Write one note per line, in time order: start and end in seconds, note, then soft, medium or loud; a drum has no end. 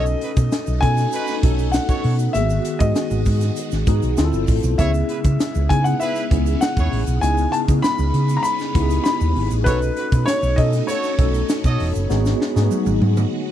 0.00 0.14 B1 loud
0.00 2.33 A3 medium
0.00 4.14 B3 medium
0.00 0.77 C#4 medium
0.00 0.77 D#4 medium
0.00 2.33 D#4 loud
0.00 0.78 F#4 medium
0.00 0.78 A4 loud
0.00 0.78 D#5 loud
0.06 shaker soft
0.21 0.31 D#4 medium
0.21 0.31 F#4 medium
0.21 0.31 B4 medium
0.21 closed hi-hat medium
0.36 0.48 B2 medium
0.36 kick loud
0.36 closed hi-hat medium
0.36 shaker medium
0.52 snare loud
0.52 closed hi-hat loud
0.52 shaker medium
0.67 0.79 B1 loud
0.67 shaker soft
0.81 1.05 B2 loud
0.81 1.40 C#4 medium
0.81 1.40 D#4 medium
0.81 1.40 F#4 medium
0.81 1.40 A4 medium
0.81 1.76 G#5 loud
0.81 kick medium
0.81 closed hi-hat medium
0.97 snare soft
0.97 closed hi-hat medium
0.97 shaker soft
1.12 1.37 D#4 loud
1.12 1.37 F#4 loud
1.12 1.37 B4 loud
1.12 closed hi-hat medium
1.12 shaker medium
1.27 snare soft
1.27 shaker medium
1.43 1.77 B1 medium
1.43 2.29 C#4 medium
1.43 2.30 D#4 medium
1.43 2.30 F#4 medium
1.43 2.30 A4 medium
1.43 kick loud
1.43 closed hi-hat medium
1.58 closed hi-hat soft
1.58 shaker soft
1.72 2.30 F#5 medium
1.72 snare loud
1.72 closed hi-hat medium
1.72 shaker medium
1.89 2.14 F#4 loud
1.89 2.14 A4 loud
1.89 2.14 C#5 loud
1.89 kick loud
1.89 closed hi-hat soft
1.89 shaker soft
2.04 2.27 B2 medium
2.04 open hi-hat medium
2.19 closed hi-hat soft
2.19 shaker medium
2.33 2.58 G#1 loud
2.33 2.78 D#3 medium
2.33 4.16 G#3 medium
2.33 2.41 A#3 medium
2.33 2.78 F#4 medium
2.33 4.16 F#4 loud
2.33 2.78 G#4 medium
2.33 2.81 E5 loud
2.33 closed hi-hat medium
2.33 shaker medium
2.40 2.79 B3 medium
2.50 shaker medium
2.65 closed hi-hat medium
2.65 shaker medium
2.79 2.92 G#2 loud
2.79 3.81 B3 medium
2.79 3.81 D#4 medium
2.79 3.82 F#4 medium
2.79 3.82 G#4 medium
2.79 3.67 D#5 medium
2.79 kick loud
2.79 closed hi-hat medium
2.79 shaker medium
2.95 snare loud
2.95 closed hi-hat medium
2.95 shaker medium
3.11 3.22 G#1 loud
3.11 closed hi-hat soft
3.11 shaker soft
3.26 3.49 G#2 loud
3.26 kick medium
3.26 open hi-hat medium
3.26 shaker medium
3.41 snare soft
3.41 closed hi-hat medium
3.41 shaker medium
3.56 closed hi-hat medium
3.56 shaker medium
3.71 3.84 G#1 medium
3.71 snare soft
3.71 shaker medium
3.87 3.99 G#2 medium
3.87 4.17 B3 medium
3.87 4.18 D#4 medium
3.87 4.18 F#4 medium
3.87 4.17 G#4 loud
3.87 kick loud
3.87 closed hi-hat medium
3.87 shaker medium
4.02 4.14 B1 medium
4.02 closed hi-hat soft
4.02 shaker soft
4.17 4.29 D2 loud
4.17 4.78 D3 medium
4.17 4.78 F3 medium
4.17 4.78 A3 medium
4.17 4.75 C4 loud
4.17 4.78 C4 medium
4.17 4.75 E4 medium
4.17 4.75 F4 medium
4.17 4.24 G#4 medium
4.17 snare loud
4.17 closed hi-hat medium
4.17 shaker medium
4.25 4.79 A4 loud
4.33 4.44 G1 medium
4.33 shaker soft
4.48 4.60 A1 medium
4.48 kick medium
4.48 open hi-hat medium
4.48 shaker medium
4.63 4.75 B1 loud
4.63 closed hi-hat medium
4.63 shaker medium
4.78 5.01 C#2 loud
4.78 9.63 C#3 medium
4.78 9.63 G#3 medium
4.78 5.65 B3 medium
4.78 13.52 B3 medium
4.78 5.65 C#4 medium
4.78 9.63 C#4 medium
4.78 4.91 E4 loud
4.78 5.65 E4 medium
4.78 4.91 G#4 loud
4.78 5.66 G#4 medium
4.78 4.91 C#5 loud
4.78 5.66 E5 medium
4.78 kick loud
4.78 closed hi-hat medium
4.78 shaker medium
4.94 closed hi-hat soft
4.94 shaker medium
5.09 5.18 E4 medium
5.09 5.18 G#4 medium
5.09 5.18 B4 medium
5.09 closed hi-hat medium
5.24 5.36 C#3 loud
5.24 kick loud
5.24 closed hi-hat medium
5.24 shaker medium
5.40 snare loud
5.40 closed hi-hat loud
5.40 shaker medium
5.55 5.67 C#2 loud
5.55 shaker medium
5.69 5.93 C#3 loud
5.69 6.27 B3 medium
5.69 6.28 D#4 medium
5.69 6.28 E4 medium
5.69 6.28 G#4 medium
5.69 5.84 G#5 loud
5.69 kick medium
5.69 closed hi-hat medium
5.84 6.01 F#5 loud
5.84 closed hi-hat medium
5.84 shaker soft
6.00 6.25 E4 loud
6.00 6.25 G#4 loud
6.00 6.25 B4 loud
6.00 6.57 E5 medium
6.00 closed hi-hat medium
6.00 shaker medium
6.15 closed hi-hat soft
6.15 shaker soft
6.30 6.54 C#2 loud
6.30 7.17 B3 medium
6.30 7.17 C#4 medium
6.30 7.18 E4 medium
6.30 7.18 G#4 medium
6.30 kick loud
6.30 closed hi-hat medium
6.46 closed hi-hat soft
6.46 shaker soft
6.61 7.18 F#5 medium
6.61 snare loud
6.61 closed hi-hat loud
6.61 shaker medium
6.77 6.88 D#2 medium
6.77 7.02 E4 loud
6.77 7.01 G#4 loud
6.77 7.01 C#5 loud
6.77 kick loud
6.77 shaker medium
6.92 7.03 A1 medium
6.92 open hi-hat medium
7.07 7.19 B1 medium
7.07 closed hi-hat medium
7.07 shaker medium
7.21 7.45 C#2 loud
7.21 7.66 B3 medium
7.21 7.66 D#4 medium
7.21 7.66 E4 medium
7.21 7.66 G#4 medium
7.21 7.53 G#5 medium
7.21 closed hi-hat medium
7.21 shaker medium
7.37 closed hi-hat soft
7.37 shaker medium
7.52 7.59 A5 loud
7.52 closed hi-hat medium
7.68 7.80 C#3 loud
7.68 8.69 B3 medium
7.68 8.69 D#4 medium
7.68 8.69 E4 medium
7.68 8.69 G#4 medium
7.68 kick loud
7.68 closed hi-hat medium
7.68 shaker medium
7.82 8.39 B5 loud
7.82 snare loud
7.82 closed hi-hat loud
7.82 shaker medium
7.98 8.10 C#2 loud
7.98 shaker soft
8.14 8.37 C#3 medium
8.14 closed hi-hat medium
8.29 closed hi-hat medium
8.29 shaker soft
8.37 8.44 A#5 medium
8.43 9.02 B5 loud
8.43 closed hi-hat medium
8.43 shaker medium
8.59 snare soft
8.59 shaker soft
8.75 8.98 C#2 medium
8.75 9.61 B3 medium
8.75 9.61 D#4 medium
8.75 9.62 E4 medium
8.75 8.82 G4 medium
8.75 kick loud
8.75 closed hi-hat medium
8.82 9.65 G#4 loud
8.90 closed hi-hat medium
8.90 shaker soft
9.04 9.47 B5 medium
9.04 snare loud
9.04 closed hi-hat medium
9.04 shaker medium
9.21 9.32 D#2 medium
9.21 shaker soft
9.36 9.47 G#1 medium
9.36 open hi-hat medium
9.51 9.66 A1 medium
9.51 closed hi-hat medium
9.51 shaker medium
9.64 9.89 B1 medium
9.64 12.08 A3 medium
9.64 10.53 C#4 medium
9.64 12.08 D#4 loud
9.64 10.53 D#4 medium
9.64 9.79 F#4 loud
9.64 10.53 F#4 medium
9.64 9.79 A4 loud
9.64 10.53 A4 medium
9.64 10.22 B4 medium
9.64 9.79 C#5 loud
9.64 kick loud
9.64 closed hi-hat medium
9.64 shaker medium
9.82 closed hi-hat soft
9.82 shaker soft
9.97 10.06 D#4 medium
9.97 10.06 F#4 medium
9.97 10.06 B4 medium
9.97 closed hi-hat medium
10.12 10.24 B2 loud
10.12 kick loud
10.12 closed hi-hat medium
10.12 shaker medium
10.26 10.58 C#5 loud
10.26 snare medium
10.26 closed hi-hat loud
10.26 shaker medium
10.43 10.54 B1 loud
10.43 closed hi-hat soft
10.43 shaker medium
10.56 10.81 B2 loud
10.56 11.15 C#4 medium
10.56 11.15 D#4 medium
10.56 11.16 F#4 medium
10.56 11.16 A4 medium
10.56 10.88 D#5 medium
10.56 kick medium
10.56 closed hi-hat medium
10.73 snare soft
10.73 closed hi-hat medium
10.73 shaker soft
10.87 11.12 F#4 loud
10.87 11.13 A4 loud
10.87 13.52 C#5 medium
10.87 11.13 C#5 loud
10.87 closed hi-hat loud
10.87 shaker medium
11.03 snare soft
11.03 shaker medium
11.18 11.41 B1 medium
11.18 12.05 C#4 medium
11.18 12.05 D#4 medium
11.18 12.05 F#4 medium
11.18 12.06 A4 loud
11.18 kick loud
11.18 closed hi-hat medium
11.34 closed hi-hat medium
11.34 shaker soft
11.49 snare loud
11.49 closed hi-hat loud
11.49 shaker medium
11.64 11.76 B2 medium
11.64 11.89 F#4 loud
11.64 11.89 A4 loud
11.64 11.89 D#5 loud
11.64 kick loud
11.64 closed hi-hat soft
11.64 shaker medium
11.80 11.91 E1 loud
11.80 open hi-hat medium
11.95 12.07 F#1 medium
11.95 closed hi-hat soft
11.95 shaker medium
12.09 12.33 G#1 loud
12.09 13.52 G#3 medium
12.09 12.53 B3 loud
12.09 12.53 D#4 medium
12.09 12.54 F#4 medium
12.09 13.52 F#4 loud
12.09 12.54 G#4 loud
12.09 snare medium
12.09 shaker medium
12.26 snare medium
12.26 shaker medium
12.41 snare medium
12.55 12.67 G#2 medium
12.55 12.62 A3 medium
12.55 13.32 D#4 medium
12.55 13.32 F#4 medium
12.55 13.32 G#4 medium
12.55 snare medium
12.55 shaker medium
12.62 13.35 B3 loud
12.71 high tom medium
12.71 shaker medium
12.86 12.98 G#1 loud
12.86 high tom medium
12.86 shaker soft
13.01 13.24 G#2 loud
13.01 high tom medium
13.17 mid tom medium
13.17 shaker soft